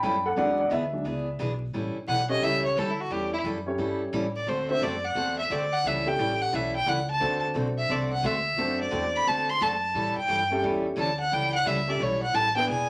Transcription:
0.03 upright bass F#2, steel-string acoustic guitar E3 G3 C#4 E4 A4, upright piano G5 B5
0.26 upright piano A4 F#5
0.36 upright bass E2, steel-string acoustic guitar E3 B3 D4 G#4, upright piano F#3 G#3 D4 D5 F#5
0.60 upright piano D5 F#5
0.68 upright bass D2, steel-string acoustic guitar E3 B3 D4 G#4, upright piano D#5
0.72 upright piano E5
0.93 upright piano F#3 G#3 D4
1.04 upright bass C#2, steel-string acoustic guitar E3 B3 D4 G#4
1.39 upright bass B1, steel-string acoustic guitar E3 B3 D4 G#4
1.73 upright bass A1, steel-string acoustic guitar E3 G3 C#4 E4 A4
1.96 muted upright bass stroke
2.08 upright bass B1, steel-string acoustic guitar E3 G3 C#4 E4 A4, fiddle F#5
2.29 upright piano C#4 E4 G4 A4 C#5, fiddle D#5
2.42 upright bass C#2, steel-string acoustic guitar E3 G3 C#4 E4 A4, fiddle E5
2.65 fiddle C#5
2.76 upright bass D2, steel-string acoustic guitar E3 G3 C#4 E4 A4, fiddle A4
2.90 fiddle E4
3.01 fiddle F#4
3.10 upright bass E2, steel-string acoustic guitar E3 G3 C#4 E4 A4, fiddle G4
3.33 fiddle E4
3.44 upright bass F#2, steel-string acoustic guitar E3 G3 C#4 E4 A4
3.66 upright piano C#4 E4 G4 A4 C#5
3.78 upright bass G2, steel-string acoustic guitar E3 G3 C#4 E4 A4
4.13 upright bass A2, steel-string acoustic guitar E3 G3 C#4 E4 A4
4.36 fiddle D5
4.47 upright bass D2, steel-string acoustic guitar D3 A3 C4 F#4 A4, fiddle C5
4.69 upright piano C4 D4 F#4 A4 C5, fiddle E5
4.81 upright bass F#2, steel-string acoustic guitar D3 A3 C4 F#4 A4, fiddle D5
5.05 fiddle F#5
5.15 upright bass E2, steel-string acoustic guitar D3 A3 C4 F#4 A4
5.39 fiddle E5
5.50 upright bass D2, steel-string acoustic guitar D3 A3 C4 F#4 A4, fiddle D5
5.73 fiddle F#5
5.84 upright bass C#2, steel-string acoustic guitar E3 G3 C#4 E4 A4, fiddle E5
6.05 upright piano A3 C#4 E4 G4 A4, fiddle G5
6.19 upright bass A1, steel-string acoustic guitar E3 G3 C#4 E4 A4
6.41 fiddle F#5
6.52 upright bass B1, steel-string acoustic guitar E3 G3 C#4 E4 A4, fiddle E5
6.76 fiddle G5
6.86 upright bass C#2, steel-string acoustic guitar E3 G3 C#4 E4 A4, fiddle F#5
7.11 fiddle A5
7.20 upright bass D2, steel-string acoustic guitar D3 A3 C4 F#4 A4, upright piano A3 C4 D4 F#4 A4
7.54 upright bass B1, steel-string acoustic guitar D3 A3 C4 F#4 A4
7.78 fiddle E5
7.89 upright bass C2, steel-string acoustic guitar D3 A3 C4 F#4 A4, fiddle D5
8.12 fiddle F#5
8.23 upright bass D2, steel-string acoustic guitar D3 A3 C4 F#4 A4, fiddle E5
8.57 upright bass F#2, steel-string acoustic guitar D3 A3 C4 F#4 A4, upright piano A3 C4 D4 F#4 A4
8.81 fiddle D5
8.91 upright bass E2, steel-string acoustic guitar D3 A3 C4 F#4 A4
9.15 fiddle B5
9.26 upright bass D2, steel-string acoustic guitar D3 A3 C4 F#4 A4, fiddle A5
9.49 fiddle C6
9.60 upright bass F#2, steel-string acoustic guitar D3 A3 C4 F#4 A4, fiddle A5
9.94 upright bass A2, steel-string acoustic guitar E3 G3 C#4 E4 A4
10.17 fiddle G5, muted upright bass stroke
10.28 upright bass G2, steel-string acoustic guitar E3 G3 C#4 E4 A4
10.50 upright piano A3 C#4 E4 G4 A4
10.63 upright bass E2, steel-string acoustic guitar E3 G3 C#4 E4 A4
10.96 upright bass D2, steel-string acoustic guitar E3 G3 C#4 E4 A4, fiddle A5
11.20 fiddle F#5
11.31 upright bass C#2, steel-string acoustic guitar E3 G3 C#4 E4 A4, fiddle G5
11.54 fiddle F#5
11.65 upright bass C#2, steel-string acoustic guitar E3 G3 C#4 E4 A4, fiddle E5
11.87 upright piano A3 C#4 E4 G4 A4, fiddle D5
11.99 upright bass B1, steel-string acoustic guitar E3 G3 C#4 E4 A4, fiddle C#5
12.23 fiddle F#5
12.33 upright bass A1, steel-string acoustic guitar E3 G3 C#4 E4 A4, fiddle A5
12.56 upright piano B3 D4 E4 G#4 B4, fiddle G5
12.68 upright bass E1, steel-string acoustic guitar E3 B3 D4 G#4, fiddle G#5

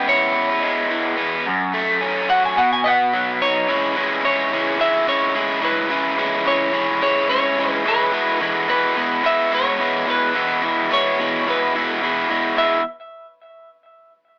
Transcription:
Already playing: overdriven electric guitar C#3 G#3 B3
0.08 overdriven electric guitar E4, clean electric guitar C#5
0.34 overdriven electric guitar B3
0.62 overdriven electric guitar G#3
0.91 overdriven electric guitar E3
1.17 overdriven electric guitar B3
1.46 overdriven electric guitar F#2
1.74 overdriven electric guitar A3
2.01 overdriven electric guitar C#4
2.29 overdriven electric guitar F#4, clean electric guitar F#5
2.45 clean electric guitar G#5
2.57 overdriven electric guitar B2, clean electric guitar F#5
2.73 clean electric guitar G#5
2.84 overdriven electric guitar B3, clean electric guitar D#5 F#5
3.13 overdriven electric guitar F#3
3.42 overdriven electric guitar D#4, clean electric guitar C#5
3.68 overdriven electric guitar C#3 E3 G#3 C#4 E4
3.96 overdriven electric guitar C#3 E3 G#3 C#4 E4
4.24 overdriven electric guitar C#3 E3 G#3 C#4 E4, clean electric guitar C#5
4.52 overdriven electric guitar C#3 E3 G#3 C#4 E4
4.79 overdriven electric guitar C#3 E3 G#3 C#4 E4, clean electric guitar E5
5.07 overdriven electric guitar C#3 E3 G#3 C#4 E4, clean electric guitar C#5
5.35 overdriven electric guitar C#3 E3 G#3 C#4 E4
5.61 overdriven electric guitar C#3 E3 G#3 C#4 E4, clean electric guitar B4
5.90 overdriven electric guitar C#3 E3 G#3 C#4 E4
6.18 overdriven electric guitar C#3 E3 G#3 C#4 E4
6.45 overdriven electric guitar C#3 E3 G#3 C#4 E4, clean electric guitar C#5
6.72 overdriven electric guitar C#3 E3 G#3 C#4 E4
7.01 overdriven electric guitar C#3 E3 G#3 C#4 E4, clean electric guitar C#5
7.29 overdriven electric guitar C#3 E3 G#3 C#4 E4, clean electric guitar C#5
7.58 overdriven electric guitar C#3 E3 G#3 C#4 E4
7.70 clean electric guitar B4
7.85 overdriven electric guitar C#3 E3 G#3 C#4 E4, clean electric guitar B4
8.12 overdriven electric guitar E2 B2 E3 G#3 B3 E4
8.41 overdriven electric guitar E2 B2 E3 G#3 B3 E4
8.45 clean electric guitar A4
8.68 overdriven electric guitar E2 B2 E3 G#3 B3 E4, clean electric guitar B4
8.97 overdriven electric guitar E2 B2 E3 G#3 B3 E4
9.24 overdriven electric guitar E2 B2 E3 G#3 B3 E4, clean electric guitar E5
9.51 overdriven electric guitar E2 B2 E3 G#3 B3 E4, clean electric guitar C#5
9.80 overdriven electric guitar E2 B2 E3 G#3 B3 E4
10.06 overdriven electric guitar E2 B2 E3 G#3 B3 E4, clean electric guitar B4
10.35 overdriven electric guitar E2 B2 E3 G#3 B3 E4
10.63 overdriven electric guitar E2 B2 E3 G#3 B3 E4
10.90 overdriven electric guitar E2 B2 E3 G#3 B3 E4, clean electric guitar C#5
11.19 overdriven electric guitar E2 B2 E3 G#3 B3 E4
11.47 overdriven electric guitar E2 B2 E3 G#3 B3 E4, clean electric guitar B4
11.75 overdriven electric guitar E2 B2 E3 G#3 B3 E4
12.02 overdriven electric guitar E2 B2 E3 G#3 B3 E4
12.30 overdriven electric guitar E2 B2 E3 G#3 B3 E4
12.58 overdriven electric guitar E2 B2 E3 G#3 B3 E4, clean electric guitar E5

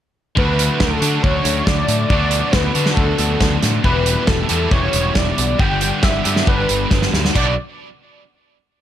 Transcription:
0.36 picked electric bass D2, overdriven electric guitar D3 F#3 A3 D4 F#4, analog synth lead B4, kick
0.59 closed hi-hat
0.80 picked electric bass D2, analog synth lead A4, kick, snare
1.00 picked electric bass D3, overdriven electric guitar F#3 A3 D4 F#4, closed hi-hat
1.05 overdriven electric guitar D3
1.23 picked electric bass D2, analog synth lead C#5, kick
1.45 picked electric bass D2, closed hi-hat
1.65 picked electric bass D2, analog synth lead D5, kick, snare
1.88 picked electric bass A2, closed hi-hat
2.08 picked electric bass D2, overdriven electric guitar D3 F#3 B3, analog synth lead D5, kick
2.13 overdriven electric guitar D4 F#4
2.31 closed hi-hat
2.51 picked electric bass D2, analog synth lead B4, kick, snare
2.75 picked electric bass D3, overdriven electric guitar D3 F#3 B3 D4 F#4, closed hi-hat
2.86 snare
2.94 picked electric bass D2, analog synth lead A4, kick
3.18 picked electric bass D2, closed hi-hat
3.41 picked electric bass D2, kick, snare
3.63 picked electric bass A2, snare, closed hi-hat
3.83 picked electric bass E1, overdriven electric guitar E2 B2 E3 G3 B3 E4 G4, analog synth lead B4, kick
4.06 closed hi-hat
4.27 picked electric bass E1, analog synth lead A4, kick, snare
4.49 picked electric bass E2, overdriven electric guitar E2 B2 E3 G3 B3 E4 G4, closed hi-hat
4.71 picked electric bass E1, analog synth lead C#5, kick
4.93 picked electric bass E1, closed hi-hat
5.15 picked electric bass E1, analog synth lead D5, kick, snare
5.38 picked electric bass B1, closed hi-hat
5.59 picked electric bass G1, overdriven electric guitar G2 D3 G3 B3 D4 G4, analog synth lead G5, kick
5.81 closed hi-hat
6.03 picked electric bass G1, analog synth lead E5, kick, snare
6.25 picked electric bass G2, overdriven electric guitar D3 G3 B3 D4 G4, closed hi-hat
6.29 overdriven electric guitar G2
6.36 snare
6.47 picked electric bass G1, analog synth lead B4, kick
6.69 picked electric bass G1, closed hi-hat
6.91 picked electric bass G1, kick, snare
7.02 snare
7.14 picked electric bass D2, snare
7.25 snare
7.34 picked electric bass B1, overdriven electric guitar B2 F#3 B3 D4 F#4, analog synth lead D5, kick, crash

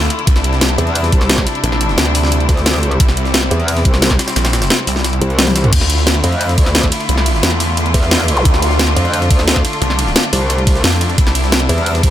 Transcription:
Already playing: string section D3 A3 E4 F4
0.02 snare
0.10 closed hi-hat
0.19 closed hi-hat
0.27 detuned saw bass C2, string section C3 G3 D4, kick, closed hi-hat
0.36 snare
0.44 closed hi-hat
0.53 snare
0.61 snare, closed hi-hat
0.70 snare
0.78 wobble bass E2, closed hi-hat
0.87 closed hi-hat
0.95 closed hi-hat, open hi-hat
1.04 snare, closed hi-hat
1.12 wobble bass C2, kick, closed hi-hat
1.21 snare
1.29 snare, closed hi-hat
1.38 kick, snare, closed hi-hat
1.47 snare, closed hi-hat
1.55 closed hi-hat
1.64 detuned saw bass A#1, closed hi-hat
1.72 snare
1.81 closed hi-hat
1.89 snare
1.98 detuned saw bass D2, snare, closed hi-hat
2.06 snare
2.15 closed hi-hat, open hi-hat
2.23 snare
2.32 closed hi-hat
2.40 closed hi-hat
2.49 wobble bass D2, kick, snare, closed hi-hat
2.57 snare
2.66 snare, closed hi-hat
2.74 snare
2.83 closed hi-hat
2.91 closed hi-hat
3.00 detuned saw bass C2, string section C4, kick, closed hi-hat
3.09 snare
3.17 closed hi-hat
3.25 snare
3.34 snare, closed hi-hat
3.43 snare
3.51 wobble bass E2, closed hi-hat
3.60 closed hi-hat
3.68 closed hi-hat, open hi-hat
3.77 snare, closed hi-hat
3.85 wobble bass C2, kick, closed hi-hat
3.94 snare
4.02 snare, closed hi-hat
4.11 kick, snare, closed hi-hat
4.19 snare, closed hi-hat
4.28 snare, closed hi-hat
4.36 detuned saw bass A#1, snare, closed hi-hat
4.45 snare, closed hi-hat
4.53 snare, closed hi-hat
4.62 snare, closed hi-hat
4.70 snare, closed hi-hat
4.79 snare
4.87 detuned saw bass C2, closed hi-hat, open hi-hat
4.96 snare
5.04 snare, closed hi-hat
5.13 closed hi-hat
5.22 wobble bass C2, closed hi-hat
5.30 closed hi-hat
5.39 snare, closed hi-hat, high tom
5.47 snare, closed hi-hat, high tom
5.56 snare, closed hi-hat
5.64 closed hi-hat, mid tom
5.73 detuned saw bass D2, string section D3 A3 E4 F4, kick, closed hi-hat, crash
5.81 snare
5.90 closed hi-hat, ride
5.98 snare
6.07 snare, closed hi-hat
6.15 snare
6.24 wobble bass F2, closed hi-hat, ride
6.32 closed hi-hat
6.41 closed hi-hat, open hi-hat
6.49 snare, closed hi-hat
6.58 wobble bass D2, kick, closed hi-hat, ride
6.66 snare
6.75 snare, closed hi-hat
6.83 kick, snare, closed hi-hat
6.92 snare, closed hi-hat, ride
7.01 closed hi-hat
7.09 detuned saw bass C2, closed hi-hat
7.17 snare
7.26 closed hi-hat, ride
7.35 snare
7.43 detuned saw bass E2, snare, closed hi-hat
7.52 snare
7.60 closed hi-hat, open hi-hat, ride
7.77 closed hi-hat
7.86 closed hi-hat
7.94 wobble bass E2, kick, snare, closed hi-hat, ride
8.03 snare
8.11 snare, closed hi-hat
8.20 snare, closed hi-hat
8.28 closed hi-hat, ride
8.37 closed hi-hat, zap
8.45 detuned saw bass D2, string section D4, kick, closed hi-hat
8.54 snare
8.62 closed hi-hat, ride
8.71 snare
8.79 snare, closed hi-hat
8.88 snare
8.96 wobble bass F2, closed hi-hat, ride
9.05 closed hi-hat
9.13 closed hi-hat, open hi-hat
9.22 snare, closed hi-hat
9.30 wobble bass D2, kick, closed hi-hat, ride
9.39 snare
9.48 snare, closed hi-hat
9.56 kick, snare, closed hi-hat
9.65 snare, closed hi-hat, ride
9.73 closed hi-hat
9.82 detuned saw bass C2, closed hi-hat
9.90 snare
9.99 closed hi-hat, ride
10.07 snare
10.16 snare, closed hi-hat
10.24 snare
10.33 wobble bass C2, closed hi-hat, open hi-hat, ride
10.50 closed hi-hat
10.58 closed hi-hat
10.67 kick, snare, closed hi-hat, ride
10.75 snare
10.84 detuned saw bass F2, snare, closed hi-hat
10.93 snare, closed hi-hat
11.01 closed hi-hat, ride
11.10 closed hi-hat
11.18 detuned saw bass C2, string section C3 G3 E4, kick, closed hi-hat
11.27 snare
11.35 closed hi-hat, ride
11.44 snare
11.52 snare, closed hi-hat
11.61 snare
11.69 wobble bass E2, closed hi-hat, ride
11.78 closed hi-hat
11.86 closed hi-hat, open hi-hat
11.95 snare, closed hi-hat
12.03 wobble bass C2, kick, closed hi-hat, ride

